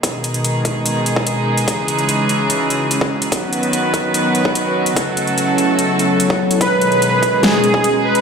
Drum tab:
HH |x-xxx-x-x-x-x--x|x-xxx-x-x-x-x--x|x-xxx-x-x-x-x--x|x-xxx-x-x-x-x--x|
SD |----------------|----------------|----------------|----------------|
BD |o-----o----o----|o------------o--|o-----o----o----|o------------o--|

HH |x-xxx-x-x-x-x--x|
SD |--------o-------|
BD |o-----o----o----|